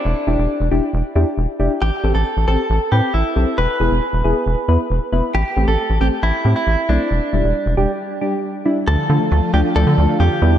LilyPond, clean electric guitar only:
\new Staff \with { instrumentName = "Clean electric guitar" } { \time 4/4 \key a \minor \tempo 4 = 136 d'4. r2 r8 | g'8. a'8. a'4 g'8 e'4 | b'2.~ b'8 r8 | g'8. a'8. g'8 e'8. e'8. d'8~ |
d'4. r2 r8 | a'4. g'8 a'4 g'4 | }